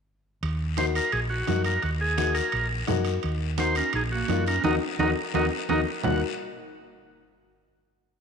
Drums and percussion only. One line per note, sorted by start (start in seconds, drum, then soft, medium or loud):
0.43 high conga soft
0.43 high timbale medium
0.43 long guiro medium
0.77 high conga medium
0.77 high timbale medium
0.77 short guiro medium
0.95 high timbale medium
0.95 short guiro medium
1.12 high timbale medium
1.12 long guiro medium
1.30 high conga soft
1.47 high conga medium
1.47 high timbale medium
1.47 low timbale medium
1.47 short guiro medium
1.65 high timbale medium
1.65 short guiro medium
1.83 high conga soft
1.83 high timbale medium
1.83 long guiro medium
2.18 high conga medium
2.18 high timbale medium
2.18 short guiro medium
2.35 high timbale medium
2.35 short guiro medium
2.52 high timbale medium
2.52 long guiro medium
2.71 high conga soft
2.87 high conga medium
2.87 low conga medium
2.87 high timbale medium
2.87 short guiro medium
3.05 high timbale medium
3.05 short guiro medium
3.23 high conga soft
3.23 high timbale medium
3.23 long guiro medium
3.58 high conga medium
3.58 high timbale medium
3.58 short guiro medium
3.75 high timbale medium
3.75 short guiro medium
3.93 high timbale medium
3.93 long guiro medium
4.10 high conga soft
4.28 high conga medium
4.28 high timbale medium
4.28 low timbale medium
4.28 short guiro medium
4.46 high timbale medium
4.46 short guiro medium
4.64 high conga loud
4.64 high timbale loud
4.64 long guiro medium
4.99 high conga medium
4.99 high timbale loud
4.99 long guiro medium
5.34 high conga medium
5.34 high timbale loud
5.34 long guiro loud
5.69 high conga loud
5.69 high timbale medium
5.69 long guiro medium
6.03 low conga medium
6.03 low timbale loud
6.03 long guiro medium